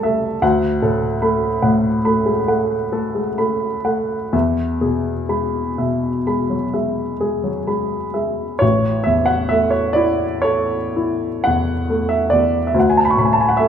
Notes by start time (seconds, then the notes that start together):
Already playing: C#2 C#3 G3 A3 A4 E5 A5
0.03 A3 E5
0.42 D2 F#5
0.82 A2 A4
1.22 A3 B5
1.62 A2 F#5
2.05 A3 B5
2.26 G#3
2.48 A3 F#5
2.92 A3 A4
3.15 G#3
3.38 A3 B5
3.85 A3 F#5
4.33 E2 E5
4.81 B2 G#4
5.29 G#3 B5
5.78 B2 E5
6.27 G#3 B5
6.50 F#3
6.74 G#3 E5
7.21 G#3 G#4
7.44 F#3
7.67 G#3 B5
8.14 G#3 E5
8.59 A1 C#5
9.04 E2 E5
9.26 F#5
9.49 A3 E5
9.70 C#5
9.93 E4 D5
10.42 A4 C#5
10.96 E4
11.44 E2 F#5
11.90 A3
12.09 E5
12.30 E2 D5
12.67 E5
12.74 D2
12.80 F#5
12.90 G#5
12.97 A5
13.05 B5
13.11 C#6
13.17 A2 B5
13.25 G#5
13.33 A5
13.41 G#5
13.49 F#5
13.57 A3 E5